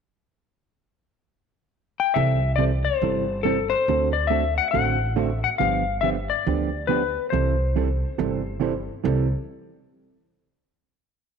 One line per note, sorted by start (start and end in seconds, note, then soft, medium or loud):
2.00 2.15 G5 loud
2.14 2.85 C2 medium
2.14 2.38 C3 medium
2.14 2.38 E3 medium
2.14 2.38 G3 medium
2.14 2.38 C4 medium
2.14 2.39 E4 medium
2.14 2.39 A4 medium
2.14 2.55 E5 medium
2.56 2.70 C3 medium
2.56 2.71 E3 medium
2.56 2.71 G3 medium
2.56 2.71 C4 medium
2.56 2.71 E4 medium
2.56 2.71 A4 medium
2.56 2.64 D5 medium
2.85 3.40 C5 medium
3.02 3.71 G1 medium
3.02 3.24 C3 medium
3.02 3.25 E3 soft
3.02 3.25 G3 medium
3.02 3.25 C4 medium
3.02 3.25 E4 medium
3.02 3.25 A4 medium
3.43 3.57 C3 medium
3.43 3.57 E3 medium
3.43 3.57 G3 medium
3.43 3.57 C4 medium
3.43 3.57 E4 medium
3.43 3.73 A4 medium
3.43 3.57 A4 medium
3.70 4.13 C5 medium
3.88 4.57 D2 medium
3.88 4.11 D3 medium
3.88 4.11 A3 medium
3.88 4.11 C4 medium
3.88 4.11 F#4 medium
3.88 4.12 A4 medium
4.13 4.30 D5 medium
4.27 4.43 D3 medium
4.27 4.43 A3 medium
4.27 4.43 C4 medium
4.27 4.43 F#4 medium
4.27 4.43 A4 medium
4.27 4.57 E5 medium
4.58 4.70 F#5 medium
4.71 5.43 A1 medium
4.71 4.96 D3 soft
4.71 4.96 A3 soft
4.71 4.97 C4 medium
4.71 4.97 F#4 medium
4.71 4.97 A4 medium
4.71 5.23 F#5 medium
5.16 5.29 D3 medium
5.16 5.29 A3 medium
5.16 5.29 C4 medium
5.16 5.29 F#4 medium
5.16 5.29 A4 medium
5.23 5.40 E5 medium
5.44 5.49 F#5 medium
5.58 6.29 G1 medium
5.58 5.82 D3 soft
5.58 5.83 F3 medium
5.58 5.83 B3 medium
5.58 5.83 D4 medium
5.58 5.83 G4 medium
5.58 6.01 F5 medium
6.01 6.15 D3 medium
6.01 6.15 F3 medium
6.01 6.16 B3 medium
6.01 6.16 D4 medium
6.01 6.16 G4 medium
6.01 6.09 E5 medium
6.30 6.90 D5 medium
6.47 7.15 D2 medium
6.47 6.69 D3 medium
6.47 6.69 F3 medium
6.47 6.69 B3 medium
6.47 6.69 D4 medium
6.47 6.69 G4 medium
6.87 7.01 D3 medium
6.87 7.01 F3 medium
6.87 7.01 B3 medium
6.87 7.01 D4 medium
6.87 7.02 G4 medium
6.87 7.30 B4 medium
7.30 8.02 C2 medium
7.30 7.55 C3 medium
7.30 7.55 E3 medium
7.30 7.55 G3 medium
7.30 7.55 C4 medium
7.30 7.55 E4 medium
7.30 7.55 A4 medium
7.30 8.56 C5 medium
7.76 7.87 C3 medium
7.76 7.88 E3 medium
7.76 7.88 G3 medium
7.76 7.88 C4 medium
7.76 7.88 E4 medium
7.76 7.88 A4 medium
8.18 8.87 G1 medium
8.18 8.41 C3 medium
8.18 8.41 E3 medium
8.18 8.41 G3 medium
8.18 8.41 C4 medium
8.18 8.41 E4 medium
8.18 8.41 A4 medium
8.60 8.72 C3 medium
8.60 8.73 E3 medium
8.60 8.73 G3 medium
8.60 8.73 C4 medium
8.60 8.73 E4 medium
8.60 8.73 A4 medium
9.04 9.31 C2 loud
9.04 9.27 C3 medium
9.04 9.27 E3 medium
9.04 9.27 G3 medium
9.04 9.27 C4 medium
9.04 9.27 E4 medium
9.04 9.27 A4 medium